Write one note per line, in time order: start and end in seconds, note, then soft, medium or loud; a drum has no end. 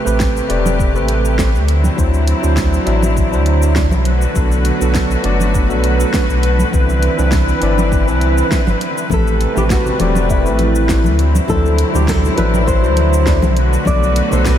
0.00 1.66 C3 medium
0.00 1.66 A3 medium
0.00 1.66 G4 medium
0.00 1.66 B4 medium
0.05 0.41 A1 medium
0.05 0.45 A3 medium
0.05 0.46 C4 medium
0.05 0.46 G4 medium
0.05 0.47 B4 medium
0.05 shaker medium
0.20 kick loud
0.20 snare loud
0.20 shaker soft
0.37 shaker soft
0.48 0.96 E1 loud
0.48 0.91 A3 medium
0.48 0.91 C4 medium
0.48 0.91 G4 medium
0.48 0.92 D5 loud
0.48 closed hi-hat medium
0.66 low conga medium
0.66 shaker medium
0.79 kick loud
0.79 shaker soft
0.94 1.56 A1 medium
0.94 1.35 A3 medium
0.94 1.35 C4 medium
0.94 1.35 G4 medium
0.94 1.36 B4 loud
0.94 shaker soft
1.08 closed hi-hat medium
1.25 shaker medium
1.37 1.48 A3 medium
1.37 1.48 C4 medium
1.37 1.48 G4 medium
1.37 1.49 C5 medium
1.37 kick loud
1.37 snare loud
1.37 shaker medium
1.54 1.89 D2 loud
1.54 shaker soft
1.68 9.07 D3 medium
1.68 4.03 F#3 medium
1.68 4.03 C4 medium
1.68 4.03 E4 medium
1.68 closed hi-hat medium
1.84 low conga medium
1.84 shaker medium
1.96 2.34 D2 medium
1.96 2.39 F#3 medium
1.96 2.39 D4 medium
1.96 2.39 E4 medium
1.96 2.40 C5 medium
1.96 kick loud
1.96 shaker medium
2.14 shaker soft
2.27 closed hi-hat medium
2.42 2.78 D2 medium
2.42 2.83 F#3 medium
2.42 2.83 D4 medium
2.42 2.84 E4 medium
2.42 2.84 C5 medium
2.42 shaker medium
2.57 kick loud
2.57 snare loud
2.57 shaker medium
2.74 shaker soft
2.85 3.34 A1 loud
2.85 3.28 F#3 medium
2.85 3.28 D4 medium
2.85 3.29 E4 medium
2.85 3.29 E5 loud
2.85 closed hi-hat medium
3.03 low conga medium
3.03 shaker medium
3.17 kick medium
3.17 shaker soft
3.31 3.93 D2 loud
3.31 3.72 F#3 medium
3.31 3.72 D4 medium
3.31 3.73 E4 medium
3.31 3.73 C5 loud
3.31 shaker soft
3.46 closed hi-hat medium
3.62 shaker medium
3.75 3.85 F#3 medium
3.75 3.86 D4 medium
3.75 3.86 E4 medium
3.75 3.86 D5 medium
3.75 kick loud
3.75 snare loud
3.75 shaker medium
3.91 4.26 B1 loud
3.91 low conga medium
3.91 shaker soft
4.05 6.70 A3 medium
4.05 6.70 F#4 medium
4.05 11.14 B4 medium
4.05 closed hi-hat medium
4.22 shaker medium
4.34 4.71 B1 loud
4.34 4.77 F#3 medium
4.34 4.77 B3 medium
4.34 4.78 D4 medium
4.34 4.78 A4 medium
4.34 kick loud
4.34 shaker medium
4.51 shaker soft
4.65 closed hi-hat medium
4.80 5.16 B1 medium
4.80 5.21 F#3 medium
4.80 5.21 B3 medium
4.80 5.21 D4 medium
4.80 5.22 A4 medium
4.80 shaker medium
4.94 kick loud
4.94 snare medium
4.94 shaker medium
5.11 shaker soft
5.23 5.71 F#1 loud
5.23 5.66 F#3 medium
5.23 5.66 B3 medium
5.23 5.66 D4 medium
5.23 5.67 D5 loud
5.23 closed hi-hat medium
5.40 low conga medium
5.40 shaker medium
5.54 kick loud
5.54 shaker soft
5.69 6.05 B1 medium
5.69 6.10 F#3 medium
5.69 6.10 B3 medium
5.69 6.10 D4 medium
5.69 6.11 A4 loud
5.69 shaker soft
5.84 closed hi-hat medium
6.00 shaker medium
6.13 6.23 F#3 medium
6.13 6.23 B3 medium
6.13 6.24 D4 medium
6.13 6.24 B4 medium
6.13 kick loud
6.13 snare loud
6.13 shaker medium
6.29 6.64 B1 loud
6.29 shaker soft
6.43 closed hi-hat medium
6.59 low conga soft
6.59 shaker medium
6.72 7.09 C2 loud
6.72 7.14 E3 medium
6.72 7.15 C4 medium
6.72 9.08 C4 medium
6.72 7.15 D4 medium
6.72 9.08 E4 medium
6.72 7.15 B4 medium
6.72 kick medium
6.72 shaker medium
6.89 shaker soft
7.03 closed hi-hat medium
7.17 7.53 C2 medium
7.17 7.58 E3 medium
7.17 7.58 C4 medium
7.17 7.59 D4 medium
7.17 7.59 B4 medium
7.17 shaker medium
7.32 kick loud
7.32 snare loud
7.32 shaker medium
7.49 shaker soft
7.61 8.09 G1 loud
7.61 8.03 E3 medium
7.61 8.03 C4 medium
7.61 8.04 D4 medium
7.61 8.04 D5 loud
7.61 closed hi-hat medium
7.78 low conga medium
7.78 shaker medium
7.92 kick loud
7.92 shaker soft
8.06 8.42 C2 medium
8.06 8.47 E3 medium
8.06 8.47 C4 medium
8.06 8.48 D4 medium
8.06 8.48 B4 loud
8.06 shaker soft
8.21 closed hi-hat medium
8.38 shaker medium
8.50 8.61 E3 medium
8.50 8.61 C4 medium
8.50 8.61 D4 medium
8.50 8.62 C5 medium
8.50 kick loud
8.50 snare medium
8.50 shaker medium
8.67 8.75 G1 medium
8.67 low conga medium
8.67 shaker soft
8.81 closed hi-hat medium
8.98 shaker medium
9.09 9.46 A1 loud
9.09 11.16 C3 medium
9.09 11.16 G3 medium
9.09 9.52 A3 medium
9.09 11.16 A3 medium
9.09 9.52 C4 medium
9.09 9.53 G4 medium
9.09 9.57 A4 loud
9.09 9.53 B4 medium
9.09 kick medium
9.09 high conga medium
9.09 shaker soft
9.27 shaker soft
9.41 closed hi-hat medium
9.55 9.91 A1 medium
9.55 9.96 A3 medium
9.55 9.96 C4 medium
9.55 9.96 G4 medium
9.55 9.63 G4 medium
9.55 9.97 B4 medium
9.55 high conga medium
9.55 low conga medium
9.55 shaker medium
9.70 10.32 F#4 medium
9.70 kick loud
9.70 snare medium
9.70 shaker medium
9.86 low conga medium
9.86 shaker soft
9.99 10.47 E1 loud
9.99 10.41 A3 medium
9.99 10.41 C4 medium
9.99 10.42 G4 medium
9.99 10.42 D5 loud
9.99 closed hi-hat medium
9.99 high conga medium
10.15 low conga medium
10.15 shaker medium
10.30 11.15 E4 medium
10.30 kick loud
10.30 shaker soft
10.44 11.06 A1 loud
10.44 10.85 A3 medium
10.44 10.86 C4 medium
10.44 10.86 G4 medium
10.44 10.86 B4 loud
10.44 shaker soft
10.59 closed hi-hat medium
10.59 high conga medium
10.75 shaker medium
10.88 10.98 A3 medium
10.88 10.99 C4 medium
10.88 10.99 G4 medium
10.88 10.99 C5 medium
10.88 kick loud
10.88 snare medium
10.88 shaker medium
11.04 11.39 D2 loud
11.04 high conga medium
11.04 shaker soft
11.18 14.58 D3 medium
11.18 13.54 F#3 medium
11.18 13.54 C4 medium
11.18 13.54 E4 medium
11.18 closed hi-hat medium
11.35 low conga medium
11.35 shaker medium
11.47 11.84 D2 medium
11.47 11.90 F#3 medium
11.47 11.90 D4 medium
11.47 11.91 E4 medium
11.47 11.95 A4 medium
11.47 11.91 C5 medium
11.47 kick medium
11.47 high conga medium
11.47 shaker medium
11.66 shaker soft
11.78 closed hi-hat medium
11.93 12.29 D2 medium
11.93 12.34 F#3 medium
11.93 12.34 D4 medium
11.93 12.34 E4 medium
11.93 12.09 G4 medium
11.93 12.35 C5 loud
11.93 high conga medium
11.93 low conga medium
11.93 shaker medium
12.08 12.37 A4 medium
12.08 kick loud
12.08 snare medium
12.08 shaker medium
12.24 low conga medium
12.24 shaker soft
12.36 12.85 A1 loud
12.36 12.79 F#3 medium
12.36 12.79 D4 medium
12.36 12.79 E4 medium
12.36 12.67 B4 loud
12.36 12.80 E5 loud
12.36 closed hi-hat medium
12.36 high conga medium
12.54 low conga medium
12.54 shaker medium
12.67 13.52 C5 loud
12.67 kick medium
12.67 shaker soft
12.82 13.44 D2 medium
12.82 13.23 F#3 medium
12.82 13.23 D4 medium
12.82 13.24 E4 medium
12.82 13.24 C5 loud
12.82 shaker soft
12.96 closed hi-hat medium
12.96 high conga medium
13.13 shaker medium
13.25 13.36 F#3 medium
13.25 13.36 D4 medium
13.25 13.37 E4 medium
13.25 13.37 D5 medium
13.25 kick loud
13.25 snare medium
13.25 shaker medium
13.42 13.77 B1 loud
13.42 high conga medium
13.42 low conga medium
13.42 shaker soft
13.56 14.58 A3 medium
13.56 14.58 F#4 medium
13.56 14.58 B4 medium
13.56 closed hi-hat medium
13.73 shaker medium
13.85 14.22 B1 medium
13.85 14.27 F#3 medium
13.85 14.28 B3 medium
13.85 14.28 D4 medium
13.85 14.28 A4 medium
13.85 14.32 D5 loud
13.85 kick loud
13.85 high conga medium
13.85 shaker medium
14.03 shaker soft
14.16 closed hi-hat medium
14.30 14.58 B1 medium
14.30 14.58 F#3 medium
14.30 14.58 B3 medium
14.30 14.58 D4 medium
14.30 14.58 A4 medium
14.30 14.46 C5 medium
14.30 high conga medium
14.30 low conga medium
14.30 shaker medium
14.45 14.58 B4 medium
14.45 kick medium
14.45 snare loud
14.45 shaker soft